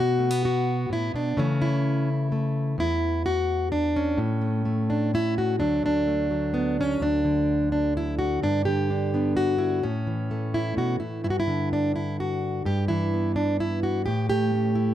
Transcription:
Already playing: B2 F#4
0.19 A3
0.31 B3
0.45 F#4
0.90 A2 E4
1.14 B2 D4
1.37 C#3 E3 A3 C#4
1.62 E4
2.32 A3
2.78 E2 E4
3.26 F#4
3.72 D4
3.96 C#4
4.18 A2
4.41 A3
4.65 A3
4.90 D4
5.14 A3 E4
5.38 F#4
5.59 D2 D3 F#3 A3 D4
5.83 D3 D4
6.07 A3
6.31 F#3 A3
6.54 B3
6.81 C#4
7.00 D2 D4
7.25 D3
7.72 D4
7.97 E4
8.19 F#4
8.43 G2 D4
8.65 D3 G4
8.90 D4
9.14 B3 D4
9.37 F#4
9.58 E4
9.83 A2 C#4
10.07 E3
10.31 A3
10.54 E4
10.77 B2 F#4
11.00 A2 E4
11.24 G2 E4
11.30 F#4
11.40 E4
11.47 D3
11.73 D4
11.96 E4
12.20 F#4
12.65 G2 G4
12.88 E3 E4
13.14 B3
13.36 D4
13.60 E4
13.83 F#4
14.06 A2 G4
14.29 A3 G4
14.55 C#4
14.75 E4

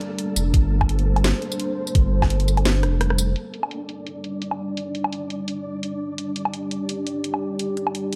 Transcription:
Already playing: G3 A#3 D4 A4 D5
0.01 closed hi-hat
0.19 closed hi-hat
0.36 F1, tambourine
0.54 G1 C5, kick, closed hi-hat
0.81 kick, low woodblock
0.89 closed hi-hat
0.99 closed hi-hat
1.16 closed hi-hat, low woodblock
1.24 snare, closed hi-hat
1.42 closed hi-hat
1.52 tambourine
1.60 closed hi-hat
1.87 tambourine
1.95 G1, kick, closed hi-hat
2.22 kick, snare, low woodblock
2.30 closed hi-hat
2.40 closed hi-hat
2.48 tambourine
2.57 closed hi-hat, low woodblock
2.65 snare, closed hi-hat
2.83 F1, cross-stick, closed hi-hat
3.01 cross-stick, closed hi-hat
3.10 cross-stick
3.18 tambourine
3.36 G3 D4 D5, closed hi-hat
3.54 closed hi-hat
3.63 low woodblock
3.71 closed hi-hat
3.89 closed hi-hat
4.07 closed hi-hat
4.24 closed hi-hat
4.42 closed hi-hat
4.51 low woodblock
4.77 closed hi-hat
4.95 closed hi-hat
5.04 low woodblock
5.13 closed hi-hat
5.30 closed hi-hat
5.48 closed hi-hat
5.83 closed hi-hat
6.18 G4, closed hi-hat
6.36 closed hi-hat
6.45 low woodblock
6.54 closed hi-hat
6.71 closed hi-hat
6.89 closed hi-hat
7.07 closed hi-hat
7.24 closed hi-hat
7.34 low woodblock
7.59 closed hi-hat
7.77 closed hi-hat
7.87 low woodblock
7.95 closed hi-hat
8.13 closed hi-hat

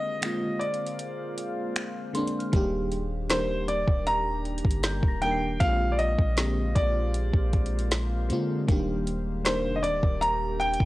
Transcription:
Already playing: D3 G#3 A#3 C4 F4 G#4 C5 D#5 F5
0.21 D3 G#3 A#3 C4, finger snap, closed hi-hat
0.25 F4
0.59 D5, closed hi-hat
0.74 closed hi-hat
0.86 closed hi-hat
0.99 closed hi-hat
1.38 closed hi-hat
1.76 finger snap, closed hi-hat
2.13 D3 G#3 A#3 C4 C6, closed hi-hat
2.17 D4
2.27 closed hi-hat
2.39 F6, closed hi-hat
2.52 D#1 D#3 G3 A#3 D4 G4, kick, closed hi-hat
2.92 closed hi-hat
3.29 D#3 G3 A#3 D4 C5, snare, closed hi-hat
3.33 A#4
3.68 D5, closed hi-hat
3.88 D#1, kick
4.07 A#5, closed hi-hat
4.45 closed hi-hat
4.58 closed hi-hat
4.65 G1, kick
4.71 closed hi-hat
4.83 G6, snare, closed hi-hat
5.03 D#1, kick
5.08 A#6
5.21 D#3 G3 A#3 D4 G5, closed hi-hat
5.25 A#4
5.31 C7
5.59 A#1 D3 G#3 A#3 C4 F4 C5 F5, kick, closed hi-hat
5.92 D5
5.99 D#5, closed hi-hat
6.19 A#1, kick
6.36 D3 G#3 A#3 C4, snare, closed hi-hat
6.40 G4
6.75 A#1 D5, kick, closed hi-hat
7.14 closed hi-hat
7.33 A#1, kick
7.53 kick, closed hi-hat
7.66 closed hi-hat
7.79 closed hi-hat
7.91 snare, closed hi-hat
8.29 D3 G#3 A#3 C4 F4, closed hi-hat
8.67 D#1 D#3 G3 A#3 D4 G4, kick, closed hi-hat
9.07 closed hi-hat
9.44 D#3 G3 A#3 D4 A#4 C5, snare, closed hi-hat
9.65 F1
9.76 D#5
9.83 D#1 D5, closed hi-hat
10.03 D#1, kick
10.21 A#5, closed hi-hat
10.60 G5, closed hi-hat
10.74 closed hi-hat
10.80 D#1, kick

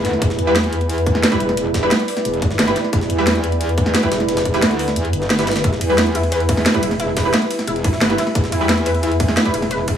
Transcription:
Already playing: E4 B4 E5
0.05 D2, snare, closed hi-hat
0.13 snare
0.22 E1 D5, kick, closed hi-hat
0.30 snare
0.39 E2, closed hi-hat
0.47 G3 E4 B4
0.56 snare, closed hi-hat
0.64 closed hi-hat
0.73 closed hi-hat
0.81 closed hi-hat
0.90 closed hi-hat, open hi-hat
0.98 closed hi-hat
1.06 kick, closed hi-hat
1.15 snare
1.23 snare, closed hi-hat
1.32 G3 E4 B4, kick, closed hi-hat
1.40 E1, closed hi-hat
1.49 snare, closed hi-hat
1.57 closed hi-hat
1.74 kick, snare, closed hi-hat
1.83 G3 E4 B4
1.91 snare, closed hi-hat
2.00 closed hi-hat
2.08 closed hi-hat, open hi-hat
2.17 snare, closed hi-hat
2.25 E1, closed hi-hat
2.34 closed hi-hat
2.42 kick, closed hi-hat
2.51 snare
2.59 G1, snare, closed hi-hat
2.67 G3 E4 B4, closed hi-hat
2.76 snare, closed hi-hat
2.84 snare
2.93 E1, kick, closed hi-hat
3.01 snare
3.10 E2, closed hi-hat
3.18 G3 E4 B4
3.27 snare, closed hi-hat
3.35 closed hi-hat
3.44 closed hi-hat
3.52 closed hi-hat
3.61 closed hi-hat, open hi-hat
3.69 closed hi-hat
3.78 kick, closed hi-hat
3.86 snare
3.95 snare, closed hi-hat
4.03 G3 E4 B4, kick, closed hi-hat
4.12 E1, snare, closed hi-hat
4.20 snare, closed hi-hat
4.29 snare, closed hi-hat
4.37 snare, closed hi-hat
4.45 kick, closed hi-hat
4.54 G3 E4 B4, snare, closed hi-hat
4.62 D2, snare, closed hi-hat
4.71 closed hi-hat
4.79 closed hi-hat, open hi-hat
4.88 snare, closed hi-hat
4.96 E2, closed hi-hat
5.05 closed hi-hat
5.13 G1, closed hi-hat
5.22 snare
5.30 snare, closed hi-hat
5.39 G3 E4 B4, snare, closed hi-hat
5.47 snare, closed hi-hat
5.51 snare, closed hi-hat
5.56 snare, closed hi-hat
5.64 E1 E4 E5, kick, closed hi-hat
5.73 snare
5.81 E2, closed hi-hat, ride
5.90 G3 E4 B4
5.98 E4, snare, closed hi-hat
6.06 closed hi-hat
6.15 E4, closed hi-hat, ride
6.23 closed hi-hat
6.32 B4, closed hi-hat, open hi-hat
6.40 closed hi-hat
6.49 E4, kick, closed hi-hat, ride
6.57 snare
6.66 snare, closed hi-hat
6.74 G3 E4 B4, kick, closed hi-hat
6.83 E1 E4, closed hi-hat, ride
6.91 snare, closed hi-hat
7.00 E4, closed hi-hat
7.17 B4, kick, snare, closed hi-hat, ride
7.25 G3 E4 B4
7.34 E4, snare, closed hi-hat
7.42 closed hi-hat
7.51 closed hi-hat, open hi-hat, ride
7.59 snare, closed hi-hat
7.67 E1 E4, closed hi-hat
7.76 closed hi-hat
7.84 E4, kick, closed hi-hat, ride
7.93 snare
8.01 G1 B4, snare, closed hi-hat
8.10 G3 E4 B4, closed hi-hat
8.18 E4, snare, closed hi-hat, ride
8.27 snare
8.35 E1, kick, closed hi-hat
8.44 snare
8.52 E2 E4, closed hi-hat, ride
8.61 G3 E4 B4
8.69 E4, snare, closed hi-hat
8.78 closed hi-hat
8.86 B4, closed hi-hat, ride
8.95 closed hi-hat
9.03 E4, closed hi-hat, open hi-hat
9.12 closed hi-hat
9.20 kick, closed hi-hat, ride
9.28 snare
9.37 E4, snare, closed hi-hat
9.45 G3 E4 B4, kick, closed hi-hat
9.54 E1 E4, closed hi-hat, ride
9.62 snare, closed hi-hat
9.71 B4, closed hi-hat
9.88 E4, kick, closed hi-hat, ride

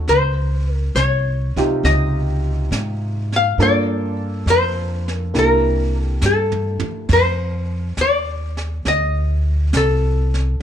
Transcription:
Already playing: A3 C#4 D#4 F#4 A4
0.08 C#2 C5, brush sweep, snare
0.73 A#4
0.95 C2 C#5, snare, hi-hat pedal
1.56 C3 D#4 F4 G4, muted upright bass stroke, kick, snare
1.83 C#2 D#5, brush sweep, snare
2.71 G#2, snare, hi-hat pedal
3.32 F5, snare
3.58 G2 A#3 D4 F4 A4, brush sweep, snare
3.62 D5
4.46 F2, snare, hi-hat pedal
4.50 C5
5.08 snare
5.13 A#4
5.34 C2 A#3 D4 E4 G4, brush sweep, snare
5.39 A#4
5.99 A4
6.21 G2, snare, hi-hat pedal
6.26 A4
6.52 floor tom
6.80 muted upright bass stroke, floor tom
7.09 F2, brush sweep, kick, snare, crash
7.13 C5
7.97 D#2, snare, hi-hat pedal
8.01 D5
8.57 snare
8.85 D2 D#5, brush sweep, snare
9.73 C2 A4, snare, hi-hat pedal
10.34 snare

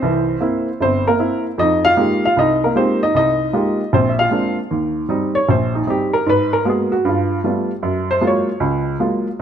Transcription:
Already playing: C4 C5
0.02 C2 E3
0.41 A#3 C4 E4
0.80 G1 C4 C5
1.07 A#3 A#4
1.19 A#3 C4 E4
1.58 F2 D#4 D#5
1.85 F4 F5
1.97 G#3 A#3 D#4 F4 G4
2.25 F4 F5
2.37 C2 D#4 D#5
2.64 A#3 A#4
2.75 G#3 A#3 C4 D#4 F4 G4 C5
3.03 D#4 D#5
3.14 C2 D#5
3.19 D#4
3.53 G#3 A#3 D#4 F4 G4
3.93 A#1 C4 C5
4.09 E5
4.19 F4 F5
4.31 G#3 A#3 C4 D4
4.71 D#2
5.09 G3 C4 D#4
5.35 C#5
5.49 A#1 C5
5.75 D#4
5.87 G3 C4 D#4 G4
6.13 A#4
6.26 G#2 B4
6.53 A#4
6.65 G#3 A#3 B3 F#4
6.69 G#4
6.92 F#4
7.05 G2
7.09 F4
7.44 G3 A3 B3 F4
7.83 F#2
8.11 C5
8.21 F#3 G#3 A#3 F4
8.27 C#5
8.60 C#2
9.00 F#3 G#3 A#3 F4

